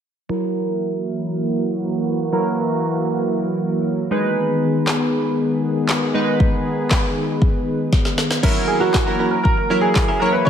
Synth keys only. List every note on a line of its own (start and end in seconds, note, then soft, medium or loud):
0.29 2.29 F#3 medium
0.29 2.29 E4 medium
0.29 2.29 A#4 medium
2.32 4.07 F#3 medium
2.32 4.07 E4 medium
2.32 4.08 A#4 medium
4.11 6.10 G#3 medium
4.11 6.11 D#4 medium
4.11 6.11 B4 medium
6.14 8.14 G#3 medium
6.14 8.14 D#4 medium
6.14 8.14 B4 medium
8.43 8.89 F#3 medium
8.43 8.90 E4 medium
8.43 8.90 A#4 loud
9.07 9.53 F#3 medium
9.07 9.53 E4 medium
9.07 9.53 A#4 medium
9.70 10.07 F#3 medium
9.70 10.07 E4 medium
9.70 10.08 A#4 medium
10.21 10.50 F#3 medium
10.21 10.50 E4 medium
10.21 10.50 C#5 medium